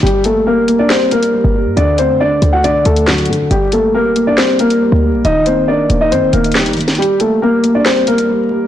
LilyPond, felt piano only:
\new Staff \with { instrumentName = "Felt piano" } { \clef bass \time 4/4 \key g \minor \tempo 4 = 138 g8 bes8 g'8 bes8 g8 bes8 g8 g8 | d8 a8 d''8 a8 d8 a8 d8 d8 | g8 bes8 g'8 bes8 g8 bes8 g8 g8 | ees8 bes8 bes'8 bes8 ees8 bes8 ees8 ees8 |
g8 bes8 g'8 bes8 g8 bes8 g8 g8 | }